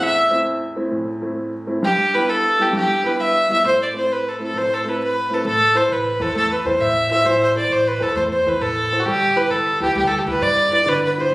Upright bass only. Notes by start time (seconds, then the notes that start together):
5.45 A1
5.89 A1
6.20 E2
6.34 E2
6.65 E2
6.79 A2
7.25 A1
7.70 A1
8.01 E2
8.16 E2
8.46 E2
8.61 A2
9.06 G1
9.51 G1
9.80 D2
9.96 D2
10.26 D2
10.41 G2
10.87 G1